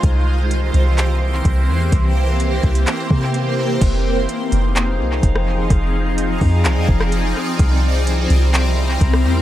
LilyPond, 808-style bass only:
\new Staff \with { instrumentName = "808-style bass" } { \clef bass \time 4/4 \key f \dorian \tempo 4 = 127 c,4. c,4. c,8 e,8 | c,4. c,8 r8 c4. | f,,4 r8 f,,4 c,8 f,,4 | f,,4. f,8 c,16 f,16 f,,4 r8 |
c,4. c,4. c,8 e,8 | }